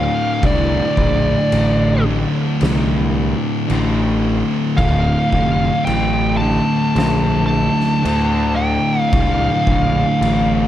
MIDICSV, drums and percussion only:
0, 0, Header, 1, 2, 480
1, 0, Start_track
1, 0, Key_signature, -1, "minor"
1, 0, Tempo, 1086957
1, 191, Time_signature, 4, 2, 24, 8
1, 4715, End_track
2, 0, Start_track
2, 0, Title_t, "Drums"
2, 190, Note_on_c, 9, 36, 106
2, 190, Note_on_c, 9, 49, 55
2, 234, Note_off_c, 9, 36, 0
2, 234, Note_off_c, 9, 49, 0
2, 430, Note_on_c, 9, 36, 80
2, 474, Note_off_c, 9, 36, 0
2, 672, Note_on_c, 9, 49, 67
2, 716, Note_off_c, 9, 49, 0
2, 1151, Note_on_c, 9, 49, 61
2, 1162, Note_on_c, 9, 38, 106
2, 1195, Note_off_c, 9, 49, 0
2, 1206, Note_off_c, 9, 38, 0
2, 1633, Note_on_c, 9, 49, 58
2, 1677, Note_off_c, 9, 49, 0
2, 2111, Note_on_c, 9, 36, 104
2, 2113, Note_on_c, 9, 49, 49
2, 2155, Note_off_c, 9, 36, 0
2, 2157, Note_off_c, 9, 49, 0
2, 2352, Note_on_c, 9, 36, 84
2, 2396, Note_off_c, 9, 36, 0
2, 2592, Note_on_c, 9, 49, 63
2, 2636, Note_off_c, 9, 49, 0
2, 3074, Note_on_c, 9, 49, 56
2, 3084, Note_on_c, 9, 38, 109
2, 3118, Note_off_c, 9, 49, 0
2, 3129, Note_off_c, 9, 38, 0
2, 3445, Note_on_c, 9, 38, 34
2, 3489, Note_off_c, 9, 38, 0
2, 3557, Note_on_c, 9, 49, 62
2, 3601, Note_off_c, 9, 49, 0
2, 4031, Note_on_c, 9, 36, 121
2, 4031, Note_on_c, 9, 49, 62
2, 4075, Note_off_c, 9, 36, 0
2, 4076, Note_off_c, 9, 49, 0
2, 4270, Note_on_c, 9, 36, 86
2, 4315, Note_off_c, 9, 36, 0
2, 4515, Note_on_c, 9, 49, 64
2, 4559, Note_off_c, 9, 49, 0
2, 4715, End_track
0, 0, End_of_file